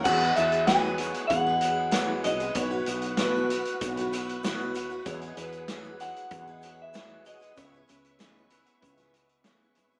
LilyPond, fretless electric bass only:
\new Staff \with { instrumentName = "Fretless electric bass" } { \clef bass \time 4/4 \key e \major \tempo 4 = 96 e,8 e,4. e,4. bis,,8 | b,,8 b,,4. b,,4. dis,8 | e,8 e,4. e,4. dis,8 | cis,8 cis,4. cis,4. gis,,8 | }